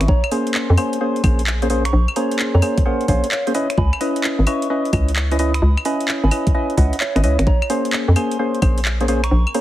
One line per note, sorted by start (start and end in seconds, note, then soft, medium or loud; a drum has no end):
0.00 0.07 G#1 medium
0.00 finger snap medium
0.00 closed hi-hat medium
0.08 0.22 A#1 loud
0.08 0.31 C#5 medium
0.08 0.31 A#5 loud
0.08 kick loud
0.24 finger snap soft
0.24 claves medium
0.31 0.76 A#3 medium
0.31 0.76 C#4 medium
0.31 0.76 G#4 medium
0.31 0.76 C5 medium
0.31 open hi-hat loud
0.47 closed hi-hat medium
0.54 clap loud
0.70 0.77 F2 loud
0.77 0.99 A#3 medium
0.77 0.99 C#4 medium
0.77 0.99 G#4 medium
0.77 0.99 C5 medium
0.77 1.00 G#5 medium
0.77 1.00 C6 medium
0.77 open hi-hat loud
0.77 claves medium
0.93 closed hi-hat medium
1.01 1.22 A#3 medium
1.01 1.22 C#4 medium
1.01 1.22 G#4 medium
1.01 1.22 C5 medium
1.16 closed hi-hat soft
1.24 1.92 A#1 loud
1.24 1.42 A#3 medium
1.24 1.42 C#4 medium
1.24 1.42 G#4 medium
1.24 1.42 C5 medium
1.24 kick loud
1.24 open hi-hat loud
1.24 claves medium
1.39 closed hi-hat medium
1.47 clap loud
1.62 1.68 A#3 medium
1.62 1.68 C#4 medium
1.62 1.68 G#4 medium
1.62 1.68 C5 medium
1.62 closed hi-hat medium
1.70 1.83 A#3 loud
1.70 1.83 C#4 medium
1.70 1.83 G#4 medium
1.70 1.83 C5 loud
1.70 open hi-hat loud
1.85 2.07 A#5 medium
1.85 2.07 C#6 loud
1.85 finger snap medium
1.85 closed hi-hat medium
1.93 2.07 A#1 loud
2.08 claves medium
2.16 2.60 A#3 medium
2.16 2.60 C#4 medium
2.16 2.60 G#4 medium
2.16 2.60 C5 medium
2.16 2.39 C#5 medium
2.16 2.39 A#5 medium
2.16 open hi-hat loud
2.31 closed hi-hat medium
2.39 clap loud
2.54 2.61 F2 loud
2.54 2.77 C#5 medium
2.54 2.77 A#5 loud
2.62 2.83 A#3 medium
2.62 2.83 C#4 medium
2.62 2.83 G#4 medium
2.62 2.83 C5 medium
2.62 open hi-hat loud
2.62 claves medium
2.78 kick loud
2.78 closed hi-hat medium
2.85 3.07 A#3 medium
2.85 3.07 C#4 medium
2.85 3.07 G#4 medium
2.85 3.03 A#4 medium
2.85 3.07 C5 medium
2.85 3.03 F#5 medium
3.01 closed hi-hat soft
3.08 3.22 A#1 loud
3.08 3.27 A#3 medium
3.08 3.27 C#4 medium
3.08 3.27 G#4 medium
3.08 3.27 C5 medium
3.08 3.26 C#5 medium
3.08 3.26 F5 medium
3.08 kick medium
3.08 open hi-hat loud
3.24 closed hi-hat medium
3.31 3.49 C#5 medium
3.31 3.49 F5 medium
3.31 clap loud
3.47 3.53 A#3 medium
3.47 3.53 C#4 medium
3.47 3.53 G#4 medium
3.47 3.53 C5 loud
3.47 closed hi-hat medium
3.55 3.68 C#4 loud
3.55 3.68 E4 medium
3.55 3.68 B4 medium
3.55 3.72 C#5 medium
3.55 3.68 D#5 loud
3.55 3.72 E5 medium
3.55 open hi-hat loud
3.70 finger snap medium
3.70 closed hi-hat medium
3.78 3.91 C#2 loud
3.78 4.00 G#5 medium
3.78 4.00 B5 loud
3.78 kick loud
3.93 finger snap soft
3.93 claves medium
4.01 4.45 C#4 medium
4.01 4.45 E4 medium
4.01 4.45 B4 medium
4.01 4.45 D#5 medium
4.01 open hi-hat loud
4.16 closed hi-hat medium
4.24 clap loud
4.39 4.46 G#1 loud
4.47 4.68 C#4 medium
4.47 4.68 E4 medium
4.47 4.68 B4 medium
4.47 4.68 D#5 medium
4.47 4.69 E5 medium
4.47 4.69 C#6 loud
4.47 open hi-hat loud
4.47 claves medium
4.62 closed hi-hat medium
4.70 4.91 C#4 medium
4.70 4.91 E4 medium
4.70 4.91 B4 medium
4.70 4.91 D#5 medium
4.85 closed hi-hat soft
4.93 5.61 C#2 loud
4.93 5.11 C#4 medium
4.93 5.11 E4 medium
4.93 5.11 B4 medium
4.93 5.11 D#5 medium
4.93 kick loud
4.93 open hi-hat loud
4.93 claves medium
5.08 closed hi-hat medium
5.16 clap loud
5.31 5.37 C#4 medium
5.31 5.37 E4 medium
5.31 5.37 B4 medium
5.31 5.37 D#5 loud
5.31 closed hi-hat medium
5.39 5.53 C#4 loud
5.39 5.53 E4 medium
5.39 5.53 B4 medium
5.39 5.53 D#5 loud
5.39 open hi-hat loud
5.54 5.77 B5 medium
5.54 5.77 D#6 medium
5.54 finger snap medium
5.54 closed hi-hat medium
5.62 5.76 C#2 loud
5.77 finger snap soft
5.77 claves medium
5.85 6.30 C#4 medium
5.85 6.30 E4 medium
5.85 6.30 B4 medium
5.85 6.30 D#5 medium
5.85 6.08 G#5 medium
5.85 6.08 B5 medium
5.85 open hi-hat loud
6.00 closed hi-hat medium
6.08 clap loud
6.23 6.31 G#1 loud
6.23 6.46 G#5 medium
6.23 6.46 B5 medium
6.31 6.53 C#4 medium
6.31 6.53 E4 medium
6.31 6.53 B4 medium
6.31 6.53 D#5 medium
6.31 open hi-hat loud
6.31 claves medium
6.47 kick loud
6.47 closed hi-hat medium
6.54 6.76 C#4 medium
6.54 6.76 E4 medium
6.54 6.76 B4 medium
6.54 6.76 D#5 medium
6.54 6.72 E5 medium
6.54 6.72 G#5 medium
6.70 closed hi-hat soft
6.77 6.91 C#2 loud
6.77 6.96 C#4 medium
6.77 6.96 E4 medium
6.77 6.96 B4 medium
6.77 6.95 D#5 medium
6.77 6.96 D#5 medium
6.77 6.95 F#5 medium
6.77 kick medium
6.77 open hi-hat loud
6.93 closed hi-hat medium
7.00 7.18 C#5 medium
7.00 7.18 E5 medium
7.00 clap loud
7.16 7.25 G#1 loud
7.16 7.22 C#4 medium
7.16 7.22 E4 medium
7.16 7.22 B4 medium
7.16 7.22 D#5 loud
7.16 finger snap medium
7.16 closed hi-hat medium
7.24 7.37 C#2 loud
7.24 7.37 C#4 loud
7.24 7.37 E4 medium
7.24 7.37 B4 medium
7.24 7.41 C#5 medium
7.24 7.37 D#5 loud
7.24 7.41 E5 medium
7.24 open hi-hat loud
7.39 7.46 G#1 loud
7.39 finger snap medium
7.39 closed hi-hat medium
7.47 7.61 A#1 loud
7.47 7.70 C#5 medium
7.47 7.70 A#5 loud
7.47 kick loud
7.62 finger snap soft
7.62 claves medium
7.70 8.14 A#3 medium
7.70 8.14 C#4 medium
7.70 8.14 G#4 medium
7.70 8.14 C5 medium
7.70 open hi-hat loud
7.85 closed hi-hat medium
7.93 clap loud
8.08 8.15 F2 loud
8.16 8.37 A#3 medium
8.16 8.37 C#4 medium
8.16 8.37 G#4 medium
8.16 8.37 C5 medium
8.16 8.39 G#5 medium
8.16 8.39 C6 loud
8.16 open hi-hat loud
8.16 claves medium
8.31 closed hi-hat medium
8.39 8.60 A#3 medium
8.39 8.60 C#4 medium
8.39 8.60 G#4 medium
8.39 8.60 C5 medium
8.54 closed hi-hat soft
8.62 9.30 A#1 loud
8.62 8.80 A#3 medium
8.62 8.81 C#4 medium
8.62 8.81 G#4 medium
8.62 8.81 C5 medium
8.62 kick loud
8.62 open hi-hat loud
8.62 claves medium
8.78 closed hi-hat medium
8.85 clap loud
9.01 9.07 A#3 medium
9.01 9.07 C#4 medium
9.01 9.07 G#4 medium
9.01 9.07 C5 loud
9.01 closed hi-hat medium
9.08 9.22 A#3 loud
9.08 9.22 C#4 medium
9.08 9.22 G#4 medium
9.08 9.22 C5 loud
9.08 open hi-hat loud
9.24 9.46 A#5 medium
9.24 9.46 C#6 loud
9.24 finger snap medium
9.24 closed hi-hat medium
9.31 9.45 A#1 loud
9.47 claves medium
9.54 9.61 A#3 medium
9.54 9.61 C#4 medium
9.54 9.61 G#4 medium
9.54 9.61 C5 medium
9.54 9.61 C#5 medium
9.54 9.61 A#5 loud
9.54 open hi-hat loud